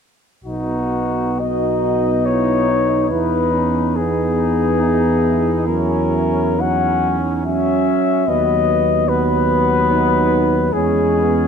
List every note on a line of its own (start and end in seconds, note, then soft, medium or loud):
0.44 3.12 B1 soft
0.44 1.38 B3 soft
0.44 1.37 D#4 soft
0.44 1.41 F#4 medium
1.40 3.08 B3 soft
1.40 3.07 D#4 soft
1.40 2.22 F#4 soft
1.40 2.27 D#5 medium
2.26 2.69 E4 soft
2.26 3.09 C#5 medium
2.69 3.11 D#4 soft
3.09 8.00 E2 soft
3.09 3.96 B3 soft
3.09 3.95 D#4 soft
3.09 3.52 E4 soft
3.09 3.97 B4 medium
3.52 3.96 C#4 soft
3.96 5.69 B3 medium
3.96 4.82 B3 soft
3.96 5.63 D#4 soft
3.96 5.66 G#4 medium
4.81 6.59 E4 medium
5.67 6.59 F#3 soft
5.67 6.58 C#4 soft
5.67 6.62 A#4 medium
6.58 7.17 F#3 soft
6.58 7.43 C#4 medium
6.58 7.44 D#4 medium
6.58 7.18 F#5 medium
7.44 8.23 F#3 soft
7.44 8.25 C#4 soft
7.44 8.26 C#4 medium
7.44 8.30 E5 medium
8.27 10.69 D#2 soft
8.27 9.06 F#3 soft
8.27 8.91 B3 medium
8.27 9.91 B3 medium
8.27 9.10 D#5 medium
9.07 10.69 F#3 medium
9.07 10.69 B3 medium
9.07 10.75 B4 medium
9.91 10.56 D#4 medium
10.73 11.47 E2 medium
10.73 11.47 G#3 soft
10.73 11.17 C#4 medium
10.73 11.47 C#4 soft
10.73 11.47 G#4 medium
11.19 11.47 B3 medium